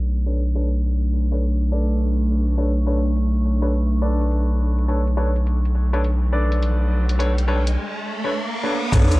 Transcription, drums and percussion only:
0.17 closed hi-hat
0.27 closed hi-hat
0.46 closed hi-hat
0.75 closed hi-hat
0.85 closed hi-hat
1.03 closed hi-hat
1.32 closed hi-hat
1.43 closed hi-hat
1.90 closed hi-hat
2.01 closed hi-hat
2.48 closed hi-hat
2.58 closed hi-hat
2.77 closed hi-hat
3.06 closed hi-hat
3.16 closed hi-hat
3.35 closed hi-hat
3.64 closed hi-hat
3.74 closed hi-hat
4.21 closed hi-hat
4.31 closed hi-hat
4.79 closed hi-hat
4.89 closed hi-hat
5.07 closed hi-hat
5.36 closed hi-hat
5.47 closed hi-hat
5.65 closed hi-hat
5.94 closed hi-hat
6.04 closed hi-hat
6.52 closed hi-hat
6.62 closed hi-hat
7.09 closed hi-hat
7.20 closed hi-hat
7.38 closed hi-hat
7.67 closed hi-hat
8.92 kick, closed hi-hat, crash, shaker
9.11 closed hi-hat, shaker

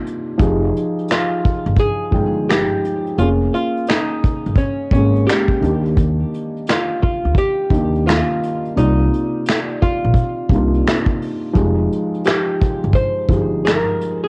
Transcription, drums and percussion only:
0.07 closed hi-hat
0.39 kick, closed hi-hat
0.76 closed hi-hat
0.99 closed hi-hat
1.08 finger snap, snare, closed hi-hat
1.45 kick, closed hi-hat
1.66 closed hi-hat
1.76 kick, closed hi-hat
2.12 kick, closed hi-hat
2.49 finger snap, snare, closed hi-hat
2.85 closed hi-hat
3.07 closed hi-hat
3.19 closed hi-hat
3.55 closed hi-hat
3.77 closed hi-hat
3.87 finger snap, snare, closed hi-hat
4.24 kick, closed hi-hat
4.46 closed hi-hat
4.56 kick, closed hi-hat
4.91 kick, closed hi-hat
5.16 closed hi-hat
5.28 finger snap, snare, closed hi-hat
5.48 kick
5.64 closed hi-hat
5.85 closed hi-hat
5.97 kick, closed hi-hat
6.34 closed hi-hat
6.56 closed hi-hat
6.67 finger snap, snare, closed hi-hat
7.03 kick, closed hi-hat
7.35 kick, closed hi-hat
7.70 kick, closed hi-hat
7.95 closed hi-hat
8.08 finger snap, snare, closed hi-hat
8.43 closed hi-hat
8.65 closed hi-hat
8.78 closed hi-hat
9.14 closed hi-hat
9.46 finger snap, snare, closed hi-hat
9.82 kick, closed hi-hat
10.14 kick, closed hi-hat
10.50 kick, closed hi-hat
10.74 closed hi-hat
10.87 finger snap, snare, closed hi-hat
11.06 kick
11.22 open hi-hat
11.55 kick, closed hi-hat
11.92 closed hi-hat
12.14 closed hi-hat
12.24 finger snap, snare, closed hi-hat
12.61 kick, closed hi-hat
12.83 closed hi-hat
12.93 kick, closed hi-hat
13.29 kick, closed hi-hat
13.66 finger snap, snare, closed hi-hat
14.01 closed hi-hat

